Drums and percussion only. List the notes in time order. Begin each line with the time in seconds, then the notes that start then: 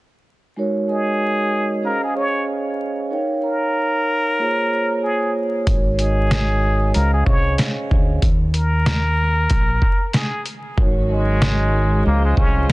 5.67 kick, closed hi-hat
5.99 closed hi-hat
6.31 snare, closed hi-hat
6.94 closed hi-hat
7.26 kick
7.58 snare, closed hi-hat
7.91 kick
8.22 kick, closed hi-hat
8.54 closed hi-hat
8.86 snare, closed hi-hat
9.50 kick, closed hi-hat
9.82 kick
10.13 snare, closed hi-hat
10.46 closed hi-hat
10.78 kick
11.42 snare
12.37 kick